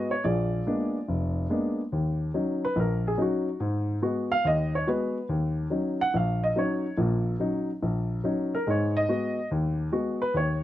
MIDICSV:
0, 0, Header, 1, 2, 480
1, 0, Start_track
1, 0, Key_signature, -6, "minor"
1, 0, Tempo, 420757
1, 272, Time_signature, 4, 2, 24, 8
1, 12131, End_track
2, 0, Start_track
2, 0, Title_t, "Grand piano"
2, 0, Program_c, 0, 0
2, 0, Note_on_c, 0, 56, 56
2, 0, Note_on_c, 0, 59, 50
2, 0, Note_on_c, 0, 66, 61
2, 0, Note_on_c, 0, 71, 51
2, 0, Note_on_c, 0, 75, 77
2, 126, Note_on_c, 0, 73, 70
2, 133, Note_off_c, 0, 75, 0
2, 138, Note_off_c, 0, 56, 0
2, 140, Note_off_c, 0, 59, 0
2, 141, Note_off_c, 0, 66, 0
2, 237, Note_off_c, 0, 71, 0
2, 266, Note_off_c, 0, 73, 0
2, 275, Note_on_c, 0, 74, 66
2, 281, Note_on_c, 0, 34, 63
2, 287, Note_on_c, 0, 68, 50
2, 289, Note_on_c, 0, 65, 49
2, 694, Note_off_c, 0, 34, 0
2, 757, Note_on_c, 0, 56, 51
2, 762, Note_on_c, 0, 58, 47
2, 766, Note_on_c, 0, 59, 44
2, 770, Note_on_c, 0, 62, 60
2, 1094, Note_off_c, 0, 56, 0
2, 1096, Note_off_c, 0, 58, 0
2, 1098, Note_off_c, 0, 59, 0
2, 1100, Note_off_c, 0, 62, 0
2, 1238, Note_on_c, 0, 29, 66
2, 1652, Note_off_c, 0, 29, 0
2, 1709, Note_on_c, 0, 56, 54
2, 1711, Note_on_c, 0, 58, 44
2, 1716, Note_on_c, 0, 59, 45
2, 1721, Note_on_c, 0, 62, 58
2, 1992, Note_off_c, 0, 74, 0
2, 1998, Note_off_c, 0, 65, 0
2, 1998, Note_off_c, 0, 68, 0
2, 2050, Note_off_c, 0, 56, 0
2, 2050, Note_off_c, 0, 58, 0
2, 2053, Note_off_c, 0, 59, 0
2, 2055, Note_off_c, 0, 62, 0
2, 2195, Note_on_c, 0, 39, 64
2, 2610, Note_off_c, 0, 39, 0
2, 2671, Note_on_c, 0, 54, 49
2, 2674, Note_on_c, 0, 61, 47
2, 2682, Note_on_c, 0, 63, 56
2, 3011, Note_off_c, 0, 54, 0
2, 3012, Note_off_c, 0, 61, 0
2, 3016, Note_off_c, 0, 63, 0
2, 3019, Note_on_c, 0, 71, 86
2, 3149, Note_on_c, 0, 34, 68
2, 3159, Note_off_c, 0, 71, 0
2, 3190, Note_on_c, 0, 70, 64
2, 3486, Note_off_c, 0, 70, 0
2, 3508, Note_on_c, 0, 68, 72
2, 3568, Note_off_c, 0, 34, 0
2, 3623, Note_on_c, 0, 54, 53
2, 3626, Note_on_c, 0, 61, 47
2, 3634, Note_on_c, 0, 63, 60
2, 3644, Note_off_c, 0, 68, 0
2, 3671, Note_on_c, 0, 66, 59
2, 3967, Note_off_c, 0, 54, 0
2, 3968, Note_off_c, 0, 61, 0
2, 3972, Note_off_c, 0, 63, 0
2, 4099, Note_off_c, 0, 66, 0
2, 4108, Note_on_c, 0, 44, 72
2, 4527, Note_off_c, 0, 44, 0
2, 4587, Note_on_c, 0, 56, 50
2, 4588, Note_on_c, 0, 59, 53
2, 4595, Note_on_c, 0, 66, 61
2, 4923, Note_on_c, 0, 77, 102
2, 4929, Note_off_c, 0, 56, 0
2, 4930, Note_off_c, 0, 59, 0
2, 4933, Note_off_c, 0, 66, 0
2, 5071, Note_off_c, 0, 77, 0
2, 5072, Note_on_c, 0, 39, 66
2, 5100, Note_on_c, 0, 75, 83
2, 5400, Note_off_c, 0, 75, 0
2, 5421, Note_on_c, 0, 73, 71
2, 5489, Note_off_c, 0, 39, 0
2, 5554, Note_on_c, 0, 56, 54
2, 5558, Note_on_c, 0, 59, 52
2, 5560, Note_off_c, 0, 73, 0
2, 5560, Note_on_c, 0, 66, 59
2, 5576, Note_on_c, 0, 71, 65
2, 5893, Note_off_c, 0, 56, 0
2, 5894, Note_off_c, 0, 59, 0
2, 5896, Note_off_c, 0, 66, 0
2, 6011, Note_off_c, 0, 71, 0
2, 6036, Note_on_c, 0, 39, 66
2, 6451, Note_off_c, 0, 39, 0
2, 6506, Note_on_c, 0, 54, 49
2, 6511, Note_on_c, 0, 61, 50
2, 6514, Note_on_c, 0, 63, 55
2, 6849, Note_off_c, 0, 54, 0
2, 6851, Note_off_c, 0, 61, 0
2, 6853, Note_off_c, 0, 63, 0
2, 6860, Note_on_c, 0, 78, 96
2, 7000, Note_off_c, 0, 78, 0
2, 7005, Note_on_c, 0, 34, 65
2, 7034, Note_on_c, 0, 77, 67
2, 7328, Note_off_c, 0, 77, 0
2, 7342, Note_on_c, 0, 75, 77
2, 7416, Note_off_c, 0, 34, 0
2, 7480, Note_on_c, 0, 54, 55
2, 7481, Note_off_c, 0, 75, 0
2, 7488, Note_on_c, 0, 61, 45
2, 7492, Note_on_c, 0, 63, 61
2, 7512, Note_on_c, 0, 73, 68
2, 7816, Note_off_c, 0, 54, 0
2, 7820, Note_off_c, 0, 61, 0
2, 7822, Note_off_c, 0, 63, 0
2, 7940, Note_off_c, 0, 73, 0
2, 7957, Note_on_c, 0, 34, 66
2, 7960, Note_on_c, 0, 46, 70
2, 8372, Note_off_c, 0, 34, 0
2, 8374, Note_off_c, 0, 46, 0
2, 8439, Note_on_c, 0, 54, 54
2, 8441, Note_on_c, 0, 61, 44
2, 8449, Note_on_c, 0, 63, 63
2, 8775, Note_off_c, 0, 54, 0
2, 8776, Note_off_c, 0, 61, 0
2, 8780, Note_off_c, 0, 63, 0
2, 8927, Note_on_c, 0, 34, 63
2, 9337, Note_off_c, 0, 34, 0
2, 9397, Note_on_c, 0, 54, 49
2, 9406, Note_on_c, 0, 61, 49
2, 9408, Note_on_c, 0, 63, 60
2, 9734, Note_off_c, 0, 54, 0
2, 9738, Note_off_c, 0, 61, 0
2, 9739, Note_off_c, 0, 63, 0
2, 9749, Note_on_c, 0, 70, 78
2, 9884, Note_off_c, 0, 70, 0
2, 9889, Note_on_c, 0, 56, 68
2, 9893, Note_on_c, 0, 44, 63
2, 9929, Note_on_c, 0, 73, 62
2, 10215, Note_off_c, 0, 73, 0
2, 10229, Note_on_c, 0, 75, 97
2, 10298, Note_off_c, 0, 56, 0
2, 10300, Note_off_c, 0, 44, 0
2, 10361, Note_on_c, 0, 56, 49
2, 10365, Note_on_c, 0, 59, 46
2, 10373, Note_on_c, 0, 66, 57
2, 10696, Note_off_c, 0, 56, 0
2, 10697, Note_off_c, 0, 59, 0
2, 10701, Note_off_c, 0, 66, 0
2, 10804, Note_off_c, 0, 75, 0
2, 10851, Note_on_c, 0, 39, 72
2, 11259, Note_off_c, 0, 39, 0
2, 11317, Note_on_c, 0, 56, 49
2, 11318, Note_on_c, 0, 59, 48
2, 11323, Note_on_c, 0, 66, 61
2, 11653, Note_off_c, 0, 56, 0
2, 11654, Note_off_c, 0, 59, 0
2, 11655, Note_on_c, 0, 71, 88
2, 11656, Note_off_c, 0, 66, 0
2, 11796, Note_on_c, 0, 39, 67
2, 11797, Note_off_c, 0, 71, 0
2, 11829, Note_on_c, 0, 73, 73
2, 12124, Note_off_c, 0, 73, 0
2, 12131, Note_off_c, 0, 39, 0
2, 12131, End_track
0, 0, End_of_file